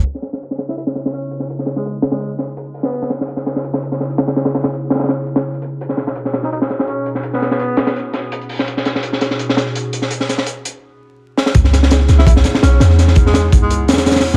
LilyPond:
<<
  \new Staff \with { instrumentName = "Ambient pad" } { \time 4/4 \key cis \minor \tempo 4 = 167 <cis b dis' e' gis'>1~ | <cis b dis' e' gis'>1 | <cis b dis' e' gis'>1~ | <cis b dis' e' gis'>1 |
<b, cis' dis' fis' gis'>1~ | <b, cis' dis' fis' gis'>1 | <b, cis' dis' fis' gis'>1~ | <b, cis' dis' fis' gis'>2 r2 |
<b dis' e' gis'>4. <b dis' e' gis'>2~ <b dis' e' gis'>8 | <b dis' e' gis'>4. <b dis' e' gis'>2~ <b dis' e' gis'>8 | }
  \new Staff \with { instrumentName = "Tenor saxophone" } { \time 4/4 \key cis \minor r4. r16 e'16 e'16 r8. cis'8 r8 | r8. gis8 r8 gis8 r4. b16~ | b8 r2. r8 | r1 |
r4. r16 dis'16 dis'16 r8. cis'8 r8 | r16 b8 b4. r4. r16 | r1 | r1 |
r4. r16 e'16 e'16 r8. cis'8 r8 | r8. gis8 r8 gis8 r4. b16 | }
  \new Staff \with { instrumentName = "808-style bass" } { \clef bass \time 4/4 \key cis \minor r1 | r1 | r1 | r1 |
r1 | r1 | r1 | r1 |
cis,4. cis,4 r8 b,,8 e,8~ | e,4. cis,4 e,4~ e,16 gis,,16 | }
  \new DrumStaff \with { instrumentName = "Drums" } \drummode { \time 4/4 hh16 sn16 <hh sn>16 sn16 hh16 sn16 <hh sn>16 sn16 hh16 sn16 <hh sn>16 sn16 hh8 hh16 sn16 | hh16 sn16 <hh sn>16 sn16 hh8 <hh sn>16 <hh sn>16 hh8 <hh sn>8 hh16 hh16 hho16 sn16 | hh16 sn16 <hh sn>16 sn16 hh16 sn16 <hh sn>16 sn16 hh16 sn16 hh16 sn16 <hh sn>16 hh16 <hh sn>16 <hh sn>16 | <hh sn>16 <hh sn>16 <hh sn>16 <hh sn>16 hh8 <hh sn>32 <hh sn>32 <hh sn>32 <hh sn>32 <hh sn>8 hh16 <hh sn>16 r16 hh16 hh8 |
hh16 sn16 <hh sn>16 sn16 hh16 sn16 <hh sn>16 sn16 hh16 sn16 <hh sn>16 sn16 hh8 hh16 sn16 | hh16 sn16 <hh sn>16 sn16 hh8 <hh sn>16 <hh sn>16 hh8 <hh sn>8 hh16 hh16 hho16 sn16 | hh16 sn16 <hh sn>16 sn16 hh16 sn16 <hh sn>16 sn16 hh16 sn16 <hh sn>16 sn16 hh8 hh16 sn16 | hh16 sn16 <hh sn>16 sn16 hh8 hh8 r4 r8 sn16 sn16 |
<hh bd>16 sn16 <hh sn>16 sn16 <hh sn>16 sn16 <hh sn>16 sn16 <hh bd>16 sn16 <hh sn>16 sn16 <hh sn>8 <hh sn>16 sn16 | <hh sn>16 sn16 <hh bd>16 sn16 <hh sn>8 <hh bd>8 hh8 <hh sn>32 <hh sn>32 <hh sn>16 <hh sn>32 <hh sn>32 <hh sn>32 <hh sn>32 hho16 sn16 | }
>>